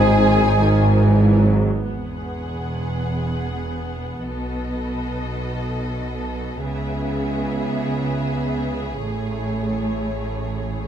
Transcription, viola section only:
0.00 0.21 G#3 medium
0.00 0.21 D#4 medium
0.20 0.40 D#3 medium
0.20 0.40 C4 medium
0.42 0.63 G#3 medium
0.42 0.63 D#4 medium
0.64 1.02 D#3 medium
1.04 1.46 E3 medium
1.45 1.86 F#3 medium
1.87 6.59 B3 soft
6.63 8.99 B3 medium
9.04 10.88 A3 soft

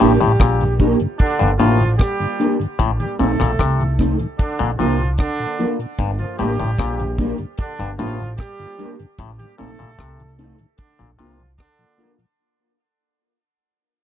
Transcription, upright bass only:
0.01 0.19 A1 loud
0.22 0.38 A1 medium
0.41 0.93 A#1 medium
1.41 1.58 G1 medium
1.61 1.95 A1 medium
2.80 2.98 A1 loud
3.20 3.38 A#1 medium
3.40 3.57 A#1 medium
3.60 4.13 C2 medium
4.60 4.77 A#1 medium
4.80 5.15 C2 medium
6.00 6.17 G1 loud
6.40 6.57 A1 medium
6.60 6.77 A1 medium
6.79 7.32 A#1 medium
7.80 7.97 G1 medium
8.00 8.35 A1 medium
9.19 9.37 A1 loud
9.60 9.77 A#1 medium
9.80 9.97 A#1 medium
9.99 10.52 C2 medium
11.00 11.17 A#1 medium
11.20 11.55 C2 medium

